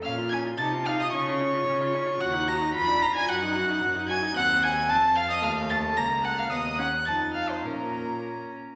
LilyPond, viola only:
\new Staff \with { instrumentName = "Viola" } { \time 2/4 \key bes \minor \tempo 4 = 111 des'16 f'16 des'16 f'16 ees'16 f'16 ees'16 f'16 | des'16 f'16 des'16 f'16 des'16 f'16 des'16 f'16 | ges'16 ees'16 ges'16 ees'16 f'16 d'16 f'16 d'16 | ges'16 ees'16 ges'16 ees'16 ges'16 ees'16 ges'16 ees'16 |
c'4 c'4 | a4 bes4 | b8 des'8 ees'4 | des'4.~ des'16 r16 | }